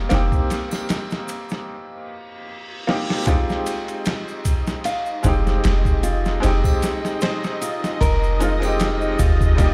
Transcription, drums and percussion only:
0.10 snare, ride, shaker
0.32 kick, shaker
0.50 snare, ride, shaker
0.71 snare, triangle, shaker
0.89 snare, ride, shaker
1.11 snare, shaker
1.28 ride, shaker
1.49 snare, shaker
2.89 snare
3.10 snare
3.27 kick, ride, shaker
3.49 snare, shaker
3.66 ride, shaker
3.88 ride, shaker
4.05 snare, ride, shaker
4.28 shaker
4.45 kick, ride, shaker
4.67 snare, shaker
4.84 ride, shaker
5.06 shaker
5.24 kick, ride, shaker
5.47 snare, shaker
5.64 snare, ride, shaker
5.85 kick, shaker
6.03 ride, shaker
6.25 snare, shaker
6.43 ride, shaker
6.64 kick, triangle, shaker
6.82 snare, ride, shaker
7.05 snare, shaker
7.21 snare, ride, shaker
7.44 snare, shaker
7.62 ride, shaker
7.84 snare, shaker
8.01 kick, ride, shaker
8.24 shaker
8.40 ride, shaker
8.62 ride, triangle, shaker
8.80 snare, ride, shaker
9.01 shaker
9.19 kick, ride, shaker
9.41 kick, shaker
9.58 kick, ride, shaker

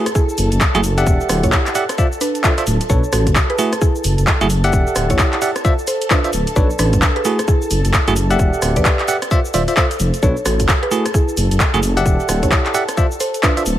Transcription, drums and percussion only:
0.06 cross-stick, closed hi-hat, cabasa
0.15 kick, cabasa
0.29 cabasa
0.38 open hi-hat, cabasa
0.52 closed hi-hat, cabasa
0.61 kick, clap, cabasa
0.75 closed hi-hat, cabasa
0.84 open hi-hat, cabasa
0.98 closed hi-hat, cabasa
1.07 kick, cabasa
1.21 cabasa
1.29 cross-stick, open hi-hat, cabasa
1.43 kick, closed hi-hat, cabasa
1.52 kick, clap, cabasa
1.66 clap, closed hi-hat, cabasa
1.75 open hi-hat, cabasa
1.89 cross-stick, closed hi-hat, cabasa
1.98 kick, cabasa
2.12 cabasa
2.21 open hi-hat, cabasa
2.35 closed hi-hat, cabasa
2.44 kick, clap, cabasa
2.58 closed hi-hat, cabasa
2.67 open hi-hat, cabasa
2.81 closed hi-hat, cabasa
2.90 kick, cabasa
3.04 cabasa
3.13 cross-stick, open hi-hat, cabasa
3.27 kick, closed hi-hat, cabasa
3.36 kick, clap, cabasa
3.50 closed hi-hat
3.58 open hi-hat, cabasa
3.73 cross-stick, closed hi-hat, cabasa
3.81 kick, cabasa
3.95 cabasa
4.04 open hi-hat, cabasa
4.18 closed hi-hat, cabasa
4.27 kick, clap, cabasa
4.41 closed hi-hat, cabasa
4.50 open hi-hat, cabasa
4.64 closed hi-hat, cabasa
4.73 kick, cabasa
4.87 cabasa
4.96 cross-stick, open hi-hat, cabasa
5.10 kick, closed hi-hat, cabasa
5.19 kick, clap, cabasa
5.33 clap, closed hi-hat
5.42 open hi-hat, cabasa
5.56 cross-stick, closed hi-hat, cabasa
5.65 kick, cabasa
5.79 cabasa
5.87 open hi-hat, cabasa
6.02 closed hi-hat, cabasa
6.10 kick, clap, cabasa
6.24 closed hi-hat, cabasa
6.33 open hi-hat, cabasa
6.47 closed hi-hat, cabasa
6.56 kick, cabasa
6.70 cabasa
6.79 cross-stick, open hi-hat, cabasa
6.93 kick, closed hi-hat, cabasa
7.02 kick, clap, cabasa
7.16 closed hi-hat
7.25 open hi-hat, cabasa
7.39 cross-stick, closed hi-hat, cabasa
7.48 kick, cabasa
7.62 cabasa
7.71 open hi-hat, cabasa
7.85 closed hi-hat, cabasa
7.94 kick, clap, cabasa
8.08 closed hi-hat, cabasa
8.16 open hi-hat, cabasa
8.31 closed hi-hat, cabasa
8.39 kick, cabasa
8.53 cabasa
8.62 cross-stick, open hi-hat, cabasa
8.76 kick, closed hi-hat, cabasa
8.85 kick, clap, cabasa
8.99 clap, closed hi-hat
9.08 open hi-hat, cabasa
9.22 cross-stick, closed hi-hat, cabasa
9.31 kick, cabasa
9.45 cabasa
9.54 open hi-hat, cabasa
9.68 closed hi-hat, cabasa
9.77 kick, clap, cabasa
9.91 closed hi-hat, cabasa
10.00 open hi-hat, cabasa
10.14 closed hi-hat, cabasa
10.23 kick, cabasa
10.37 cabasa
10.46 cross-stick, open hi-hat, cabasa
10.60 kick, closed hi-hat, cabasa
10.68 kick, clap, cabasa
10.83 closed hi-hat
10.91 open hi-hat, cabasa
11.06 cross-stick, closed hi-hat, cabasa
11.14 kick, cabasa
11.28 cabasa
11.37 open hi-hat, cabasa
11.51 closed hi-hat, cabasa
11.60 kick, clap, cabasa
11.74 closed hi-hat, cabasa
11.83 open hi-hat, cabasa
11.97 closed hi-hat, cabasa
12.06 kick, cabasa
12.20 cabasa
12.29 cross-stick, open hi-hat, cabasa
12.43 kick, closed hi-hat, cabasa
12.52 kick, clap, cabasa
12.66 clap, closed hi-hat
12.75 open hi-hat, cabasa
12.88 cross-stick, closed hi-hat, cabasa
12.97 kick, cabasa
13.11 cabasa
13.20 open hi-hat, cabasa
13.34 closed hi-hat, cabasa
13.43 kick, clap, cabasa
13.57 closed hi-hat, cabasa
13.66 open hi-hat, cabasa

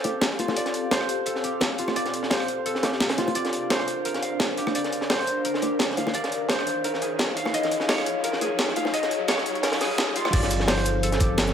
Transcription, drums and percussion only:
0.04 closed hi-hat, high bongo
0.21 snare, closed hi-hat
0.31 snare
0.39 closed hi-hat, high bongo
0.48 snare, high bongo
0.56 closed hi-hat
0.66 snare, closed hi-hat
0.74 closed hi-hat
0.91 snare, closed hi-hat
1.01 cross-stick, snare
1.09 closed hi-hat
1.26 closed hi-hat
1.35 snare
1.44 closed hi-hat
1.61 snare, closed hi-hat, high bongo
1.71 snare
1.78 closed hi-hat
1.88 cross-stick, snare, high bongo
1.96 closed hi-hat
2.05 snare, closed hi-hat
2.14 closed hi-hat
2.23 snare
2.30 snare, closed hi-hat, open hi-hat
2.40 cross-stick, snare
2.48 closed hi-hat
2.66 closed hi-hat
2.75 snare
2.83 snare, closed hi-hat, high bongo
2.92 snare
3.00 snare, closed hi-hat
3.09 snare, closed hi-hat
3.18 snare, closed hi-hat, high bongo
3.28 closed hi-hat, high bongo
3.35 closed hi-hat
3.45 snare, closed hi-hat
3.53 closed hi-hat
3.70 snare, closed hi-hat
3.79 cross-stick, snare
3.88 closed hi-hat
4.05 closed hi-hat
4.14 snare, closed hi-hat
4.23 closed hi-hat
4.40 snare, closed hi-hat, high bongo
4.49 snare
4.57 closed hi-hat
4.67 cross-stick, snare, high bongo
4.75 closed hi-hat
4.84 snare, closed hi-hat
4.92 closed hi-hat
5.01 snare
5.10 snare, closed hi-hat, open hi-hat
5.19 cross-stick, snare
5.27 closed hi-hat
5.45 closed hi-hat
5.54 snare
5.62 closed hi-hat, high bongo
5.79 snare, closed hi-hat
5.90 snare
5.97 closed hi-hat, high bongo
6.07 snare, high bongo
6.14 closed hi-hat
6.24 snare, closed hi-hat
6.32 closed hi-hat
6.49 snare, closed hi-hat
6.59 cross-stick, snare
6.67 closed hi-hat
6.84 closed hi-hat
6.94 snare
7.02 closed hi-hat
7.19 snare, closed hi-hat, high bongo
7.28 snare
7.37 closed hi-hat
7.45 cross-stick, snare, high bongo
7.54 closed hi-hat
7.63 snare, closed hi-hat
7.71 closed hi-hat
7.80 snare
7.89 snare, closed hi-hat, open hi-hat
7.98 cross-stick, snare
8.06 closed hi-hat
8.24 closed hi-hat
8.33 snare
8.41 closed hi-hat, high bongo
8.59 snare, closed hi-hat
8.69 snare
8.76 closed hi-hat, high bongo
8.85 snare, high bongo
8.94 closed hi-hat
9.03 snare, closed hi-hat
9.11 closed hi-hat
9.28 snare, closed hi-hat
9.38 cross-stick, snare
9.46 closed hi-hat
9.55 closed hi-hat
9.63 snare, closed hi-hat, open hi-hat
9.72 snare, closed hi-hat, open hi-hat
9.81 snare, closed hi-hat, open hi-hat
9.98 snare, closed hi-hat, high bongo
10.08 snare
10.16 closed hi-hat
10.25 cross-stick, snare, high bongo
10.33 kick, closed hi-hat, crash
10.43 snare, shaker
10.51 closed hi-hat, shaker
10.60 snare
10.68 snare, closed hi-hat, open hi-hat
10.77 cross-stick, snare
10.86 closed hi-hat, shaker
11.03 closed hi-hat
11.12 snare, closed hi-hat, shaker
11.20 kick, closed hi-hat, shaker
11.38 snare, closed hi-hat
11.47 snare, shaker

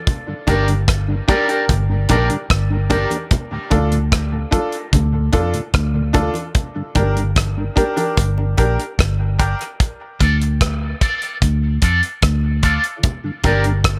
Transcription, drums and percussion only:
0.07 kick, closed hi-hat, low conga
0.47 kick, closed hi-hat, low conga
0.68 closed hi-hat
0.88 kick, cross-stick, closed hi-hat
1.29 kick, closed hi-hat
1.49 closed hi-hat
1.69 kick, closed hi-hat, low conga
2.09 kick, closed hi-hat, low conga
2.30 closed hi-hat
2.50 kick, cross-stick, closed hi-hat
2.90 kick, closed hi-hat, low conga
3.10 closed hi-hat, high conga
3.31 kick, closed hi-hat, low conga
3.71 kick, closed hi-hat, low conga
3.92 closed hi-hat
4.12 kick, cross-stick, closed hi-hat
4.52 kick, closed hi-hat
4.72 closed hi-hat
4.93 kick, closed hi-hat, low conga
5.33 kick, closed hi-hat, low conga
5.54 closed hi-hat
5.74 kick, cross-stick, closed hi-hat
6.14 kick, closed hi-hat, low conga
6.34 closed hi-hat, high conga
6.55 kick, closed hi-hat, low conga
6.95 kick, closed hi-hat, low conga
7.17 closed hi-hat
7.36 kick, cross-stick, closed hi-hat, high conga
7.77 kick, closed hi-hat
7.97 closed hi-hat, high conga
8.17 kick, closed hi-hat, low conga
8.38 high conga
8.57 kick, closed hi-hat, high conga, low conga
8.80 closed hi-hat
8.99 kick, cross-stick, closed hi-hat
9.39 kick, closed hi-hat, high conga, low conga
9.59 closed hi-hat, high conga
9.80 kick, closed hi-hat, low conga
10.21 kick, closed hi-hat, low conga
10.42 closed hi-hat
10.61 kick, cross-stick, closed hi-hat
11.01 kick, closed hi-hat
11.22 closed hi-hat
11.42 kick, closed hi-hat, low conga
11.82 kick, closed hi-hat, low conga
12.03 closed hi-hat
12.22 kick, cross-stick, closed hi-hat
12.63 kick, closed hi-hat, low conga
12.84 closed hi-hat, high conga
13.03 kick, closed hi-hat, low conga
13.44 kick, closed hi-hat, low conga
13.64 closed hi-hat
13.84 kick, cross-stick, closed hi-hat

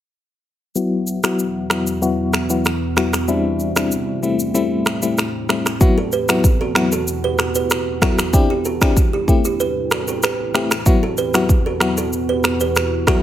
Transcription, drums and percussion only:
0.76 shaker
1.07 shaker
1.23 finger snap, cross-stick, shaker
1.39 shaker
1.70 finger snap, cross-stick, shaker
1.87 shaker
2.02 shaker
2.33 finger snap, cross-stick, shaker
2.50 shaker
2.65 finger snap, cross-stick, shaker
2.97 finger snap, cross-stick, shaker
3.13 finger snap, cross-stick, shaker
3.28 shaker
3.60 shaker
3.76 finger snap, cross-stick, shaker
3.92 shaker
4.23 shaker
4.39 shaker
4.55 shaker
4.86 finger snap, cross-stick, shaker
5.02 shaker
5.18 finger snap, cross-stick, shaker
5.49 finger snap, cross-stick, shaker
5.66 finger snap, cross-stick, shaker
5.81 kick, shaker
6.12 shaker
6.29 finger snap, cross-stick, shaker
6.44 kick, shaker
6.75 finger snap, cross-stick, shaker
6.92 shaker
7.08 shaker
7.38 finger snap, cross-stick, shaker
7.55 shaker
7.70 finger snap, cross-stick, shaker
8.02 finger snap, kick, cross-stick, shaker
8.19 finger snap, cross-stick, shaker
8.33 kick, shaker
8.65 shaker
8.81 finger snap, kick, cross-stick, shaker
8.97 kick, shaker
9.28 kick, shaker
9.45 shaker
9.60 shaker
9.91 finger snap, cross-stick, shaker
10.08 shaker
10.23 finger snap, cross-stick, shaker
10.54 finger snap, cross-stick, shaker
10.71 finger snap, cross-stick, shaker
10.86 kick, shaker
11.17 shaker
11.34 finger snap, cross-stick, shaker
11.49 kick, shaker
11.80 finger snap, cross-stick, shaker
11.97 shaker
12.13 shaker
12.44 finger snap, cross-stick, shaker
12.60 shaker
12.76 finger snap, cross-stick, shaker
13.07 finger snap, kick, cross-stick, shaker

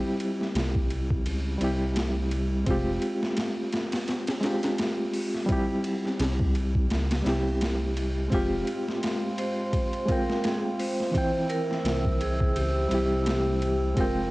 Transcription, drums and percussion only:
0.20 ride
0.41 snare
0.55 snare, ride
0.75 kick
0.90 ride
1.10 kick
1.26 ride
1.61 ride
1.96 snare, ride
2.31 ride
2.66 kick, ride
3.02 ride
3.23 snare
3.37 snare, ride
3.73 snare, ride
3.92 snare, ride
4.08 snare, ride
4.27 snare, ride
4.43 snare, ride
4.63 snare, ride
4.78 snare, ride
5.14 open hi-hat
5.35 snare
5.49 kick, ride
5.84 ride
6.05 snare
6.19 snare, ride
6.40 kick
6.55 ride
6.75 kick
6.90 snare, ride
7.11 snare, ride
7.26 snare, ride
7.61 snare, ride
7.97 ride
8.32 kick, ride
8.67 ride
8.88 snare
9.03 snare, ride
9.38 ride
9.73 kick, ride
9.93 ride
10.08 kick, ride
10.30 snare
10.44 snare, ride
10.80 open hi-hat
11.00 snare
11.15 kick, ride
11.50 ride
11.71 snare
11.85 snare, ride
12.05 kick
12.21 ride
12.40 kick
12.56 ride
12.91 ride
13.26 snare, ride
13.62 ride
13.97 kick, ride

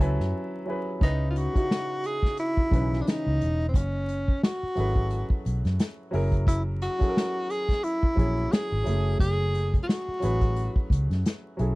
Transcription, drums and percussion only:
0.01 closed hi-hat
0.20 snare
1.01 kick, closed hi-hat
1.36 closed hi-hat
1.55 kick, closed hi-hat
1.71 snare, closed hi-hat
2.04 closed hi-hat
2.23 kick, snare
2.37 closed hi-hat
2.57 kick
2.71 kick, closed hi-hat
2.93 snare
3.07 snare, closed hi-hat
3.41 closed hi-hat
3.61 closed hi-hat
3.74 kick, closed hi-hat
4.09 closed hi-hat
4.28 kick
4.43 snare, closed hi-hat
4.76 closed hi-hat
4.96 kick
5.10 closed hi-hat
5.30 kick
5.46 closed hi-hat
5.65 snare, closed hi-hat
5.79 snare, closed hi-hat
6.13 open hi-hat
6.32 kick, closed hi-hat
6.47 kick, closed hi-hat
6.82 closed hi-hat
7.01 kick, closed hi-hat
7.17 snare, closed hi-hat
7.50 closed hi-hat
7.69 kick, snare, closed hi-hat
7.84 closed hi-hat
8.03 kick
8.17 kick, closed hi-hat
8.52 snare, closed hi-hat
8.86 closed hi-hat
9.20 kick, closed hi-hat
9.55 closed hi-hat
9.74 kick, closed hi-hat
9.89 snare, closed hi-hat
10.22 closed hi-hat
10.41 kick, closed hi-hat
10.56 closed hi-hat
10.76 kick
10.90 kick, closed hi-hat
11.11 snare, closed hi-hat
11.26 snare, closed hi-hat
11.59 closed hi-hat

